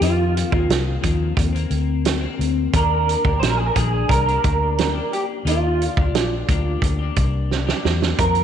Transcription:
0.01 F2 D#3 A#3 C4 F4, closed hi-hat
0.37 closed hi-hat
0.51 D#2 D#3 A#3 C4, kick
0.69 C2, snare, closed hi-hat
1.01 D#2 F2 D#3 A#3 C4, kick, closed hi-hat
1.37 D#2, kick, closed hi-hat
1.53 A#3 C4, closed hi-hat
1.70 D2, closed hi-hat
2.05 snare, closed hi-hat
2.21 A#3 C4
2.39 D2, closed hi-hat
2.73 D#2 D#3 A#3 D4 A#4, kick, closed hi-hat
2.77 G4
3.09 closed hi-hat
3.24 D2 A#3 D4 G4, kick
3.40 A#1 C5, snare, closed hi-hat
3.50 A#4
3.57 G#4
3.66 A#4
3.75 A#1 D#3 A#3 D4 G#4, kick, closed hi-hat
4.09 C2 A#4, kick, closed hi-hat
4.26 D4 G4, closed hi-hat
4.30 A#3
4.44 D2, kick, closed hi-hat
4.78 snare, closed hi-hat
4.93 D4 G4
4.97 A#3
5.13 G4, closed hi-hat
5.45 D#2 D#3 A#3 D4 F4 G4, closed hi-hat
5.82 closed hi-hat
5.97 D2 D4 G4, kick
6.01 A#3
6.14 A#1, snare, closed hi-hat
6.49 D2 A#3 D4 G4, kick, closed hi-hat
6.82 D2, kick, closed hi-hat
6.99 A#3 D4 G4
7.16 C2, kick, closed hi-hat
7.51 snare
7.67 A#3 D4 G4, snare
7.85 E2, snare
8.02 snare
8.18 F2 D#3 A#3 C4 A#4, kick, closed hi-hat
8.35 closed hi-hat

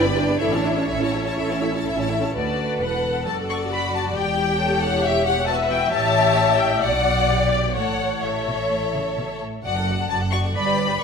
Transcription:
Already playing: G1 D5
0.03 B3 G4 D5 B5
0.15 D4 B4 G5
0.26 B3 G4 D5 B5
0.39 A1 D4 E4 A4 C#5 E5
0.53 C#4 E4 C#5 A5
0.65 E4 A4 E5
0.77 C#4 E4 C#5 A5
0.88 A1 C#4 E4 A4 E5
1.01 C#4 E4 C#5 A5
1.13 E4 A4 E5
1.26 C#4 E4 C#5 A5
1.38 A1 E4 A4 E5
1.51 C#4 E4 C#5 A5
1.62 E4 A4 E5
1.74 C#4 E4 C#5 A5
1.86 A1 E4 A4 E5
1.98 C#4 E4 C#5 A5
2.11 E4 A4 E5
2.22 C#4 E4 C#5 A5
2.35 D2 F#4 A4 B4 D5
2.81 E1 E2 A4 F#5
3.25 F#1 F#2 F#4 A4 D5 A5
3.50 C#6
3.71 F#4 B5
3.95 A5
4.15 E1 E2 G4 G5
4.59 A4 C#5
4.82 F#5
5.03 G4 E5
5.26 F#5
5.47 F#4 B4 E5 A5
5.70 G5
5.93 A1 A2 G4 C#5 A5
6.59 G5
6.81 B1 B2 F#4 D5 F#5
7.29 G4
7.51 D5
7.74 A1 A2 A4 C#5 F#5
8.23 A2 A4 C#5 E5
8.48 B2
8.70 A2
8.94 C#3
9.18 B2
9.41 A2
9.64 F#1 F#2 F#4 D5 F#5
9.76 A4 F#5
9.88 F#4 D5
10.00 A4 F#5
10.09 F#1 F#2 F#4 D5 A5
10.22 A4 F#5
10.32 F#4 D5 C#6
10.44 A4 F#5
10.55 G1 G2 B4 D5 B5
10.67 G4 B4
10.78 B4 D5
10.87 G4 B4
10.99 G2 B4 D5 C#6

